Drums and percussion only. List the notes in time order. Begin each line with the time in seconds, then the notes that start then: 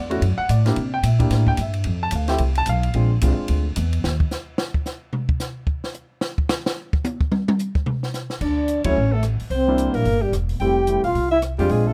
0.11 ride
0.22 ride
0.49 hi-hat pedal, ride
0.66 snare, ride
0.76 ride
1.03 hi-hat pedal, ride
1.20 kick, ride
1.31 snare, ride
1.47 kick
1.57 hi-hat pedal, ride
1.73 ride
1.84 ride
2.11 hi-hat pedal, ride
2.28 snare, ride
2.38 ride
2.55 ride
2.66 hi-hat pedal, ride
2.83 ride
2.94 ride
3.21 hi-hat pedal, ride
3.48 ride
3.76 hi-hat pedal, ride
3.93 ride
4.04 snare
4.20 kick
4.31 snare, hi-hat pedal
4.58 snare
4.74 kick
4.86 snare, hi-hat pedal
5.13 floor tom
5.29 kick
5.40 snare, hi-hat pedal
5.67 kick
5.84 snare
5.94 hi-hat pedal
6.21 snare
6.38 kick
6.49 snare, hi-hat pedal
6.66 snare
6.93 kick
7.04 hi-hat pedal, high tom
7.21 kick
7.32 mid tom
7.48 mid tom
7.59 hi-hat pedal
7.75 kick
7.86 floor tom
8.03 snare
8.14 snare, hi-hat pedal
8.30 snare
8.41 kick, crash
8.68 closed hi-hat
8.84 kick, ride
9.23 cross-stick, closed hi-hat
9.40 open hi-hat
9.50 open hi-hat
9.78 closed hi-hat
9.94 open hi-hat
10.05 open hi-hat
10.33 cross-stick, closed hi-hat
10.49 open hi-hat
10.60 open hi-hat
10.87 closed hi-hat
11.04 open hi-hat
11.15 open hi-hat
11.42 cross-stick, closed hi-hat
11.59 open hi-hat
11.69 open hi-hat